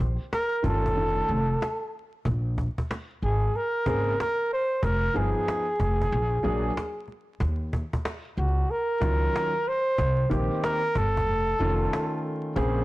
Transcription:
0.00 A#1, cajon bass
0.33 A#4, cajon slap
0.62 G1 D#3 A3 C#4 F4 A4, cajon bass
0.86 cajon bass
0.95 F1 D#3 A3 C#4 F4, cajon slap
1.28 F1, cajon slap
1.62 cajon slap
2.25 A#1, cajon bass
2.58 cajon bass
2.78 cajon bass
2.91 cajon slap
3.22 G#1 G#4, cajon slap
3.54 A#4, cajon slap
3.86 G#1 C#3 A#3 C4 G#4, cajon bass
4.20 A#4, cajon slap
4.53 C5
4.83 F1 A#4, cajon bass
5.14 G1 F3 B3 D#4 G#4, cajon slap
5.48 cajon slap
5.80 F1, cajon bass
6.02 cajon bass
6.11 A#1, cajon slap
6.43 A#1 F#3 A#3 D4 G#4, cajon slap
6.64 cajon slap
6.77 cajon slap
7.08 cajon slap
7.40 D#2, cajon bass
7.73 cajon bass
7.93 cajon bass
8.05 cajon slap
8.37 C#2 F#4, cajon slap
8.69 A#4, cajon slap
9.00 C#2 D#3 F#3 C#4 F4, cajon bass
9.36 cajon slap
9.68 C5
9.98 C2, cajon bass
10.30 A#1 D#3 A#3 C4 G4, cajon bass
10.64 A#4, cajon slap
10.95 G1 A4, cajon bass
11.17 cajon bass
11.27 F1, cajon slap
11.59 F1 D#3 A3 C#4 F4, cajon slap
11.93 cajon slap
12.56 A#1 C#3 A#3 C4 G#4, cajon bass

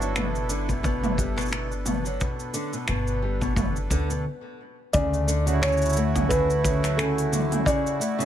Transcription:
Already playing: G1 D4 E4 F#4 A4
0.00 F#3, shaker
0.15 B2, finger snap, mid tom, shaker
0.35 shaker
0.42 B4
0.49 D3, shaker
0.68 B2, kick, shaker
0.83 B2, kick, shaker
1.03 mid tom, shaker
1.17 G3, kick, shaker
1.36 B2, finger snap, shaker
1.41 shaker
1.45 shaker
1.48 shaker
1.50 B2, finger snap, shaker
1.53 shaker
1.72 shaker
1.85 B2, mid tom, shaker
2.05 F#3, shaker
2.20 B2, kick, shaker
2.40 shaker
2.54 D3, shaker
2.73 B2, shaker
2.88 G1 B2, finger snap, shaker
3.07 shaker
3.22 G3
3.41 B2, kick, shaker
3.56 B2, kick, mid tom, shaker
3.76 shaker
3.90 D2 D3, kick, shaker
4.10 B2, shaker
4.93 D2 C#3 D5, kick, open hi-hat, shaker
5.00 A3
5.14 shaker
5.27 D3, shaker
5.45 C#3 F#4, open hi-hat, shaker
5.51 E4
5.62 C#3 C#5, finger snap, open hi-hat, shaker
5.68 shaker
5.72 shaker
5.77 shaker
5.82 shaker
5.86 shaker
5.89 shaker
5.93 A3, shaker
5.97 shaker
6.14 C#3, kick, mid tom, open hi-hat, shaker
6.29 C#3 B4, kick, open hi-hat, shaker
6.50 shaker
6.64 C#3, kick, shaker
6.83 F#3, finger snap, open hi-hat, shaker
6.97 C#3 A4, finger snap, open hi-hat, shaker
7.18 open hi-hat, shaker
7.32 D3, mid tom, shaker
7.51 C#3, mid tom, open hi-hat, shaker
7.66 C#3 D5, kick, open hi-hat, shaker
7.87 shaker
8.00 A3, shaker
8.19 C#3, open hi-hat, shaker

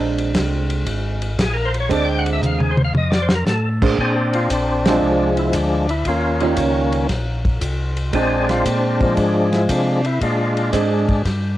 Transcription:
Already playing: A#1 G#3 C4 D4
0.18 ride
0.34 C2, kick, snare, hi-hat pedal, ride
0.70 ride
0.86 G#1, kick, ride
1.22 ride
1.39 A#1 G#4, kick, snare, hi-hat pedal, ride
1.54 A#4
1.65 C5
1.74 ride
1.80 C#5
1.89 D2 G#3 C4 D4 D5, kick, ride
2.05 G5
2.18 F#5
2.26 ride
2.33 E5
2.42 D#2 F5, hi-hat pedal, mid tom
2.58 G#4, mid tom
2.71 C5
2.77 mid tom
2.84 F5
2.94 F2 D#5, mid tom
3.10 D5, snare
3.22 C5
3.29 snare
3.35 A#4
3.46 A2 A4, snare, hi-hat pedal
3.82 A#3 D4 G#4 C5, kick, crash
3.98 A#2 C4 D4 G#4, kick
4.33 F4, ride
4.50 A#1 D4, kick, hi-hat pedal, ride
4.86 F3 G#3 C4 D4, snare, ride
5.02 C2
5.37 E4, ride
5.53 D2 D4, kick, hi-hat pedal, ride
5.89 E4, ride
6.05 D#2 C#4 F4, kick, ride
6.09 A#3
6.40 D#3 G3 C#4 F4, ride
6.57 C#2, kick, hi-hat pedal, ride
6.92 ride
7.09 A#1, kick, snare, ride
7.45 kick, ride
7.61 C2, kick, hi-hat pedal, ride
7.97 ride
8.13 A#1 G#3 C4 D4 G#4, kick, ride
8.49 F4, snare, ride
8.65 A#2 D4, kick, hi-hat pedal, ride
9.01 F3 G#3 D4, kick, ride
9.17 G#2, kick, ride
9.53 E4, snare, ride
9.69 C3 D4, kick, hi-hat pedal, ride
10.05 E4, ride
10.21 A#2 G#3 D4 F4, kick, ride
10.57 ride
10.73 G#2 G#3 C4 D4, kick, hi-hat pedal, ride
11.09 kick, ride
11.25 G2, kick, snare, ride

